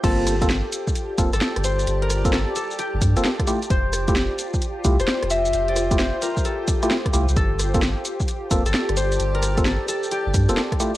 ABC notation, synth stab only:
X:1
M:4/4
L:1/16
Q:"Swing 16ths" 1/4=131
K:Gdor
V:1 name="Synth stab"
[B,CFA]3 [B,CFA] z6 [B,CFA] z4 z | z3 [B,CFA] z6 z [B,CFA] z2 [A,EFG] z | z3 [A,EFG] z6 [A,EFG] z4 z | z3 [A,EFG] z6 z [A,EFG] z2 [A,EFG] z |
z3 [B,CFA] z6 [B,CFA] z4 z | z3 [B,CFA] z6 z [B,CFA] z2 [A,EFG] z |]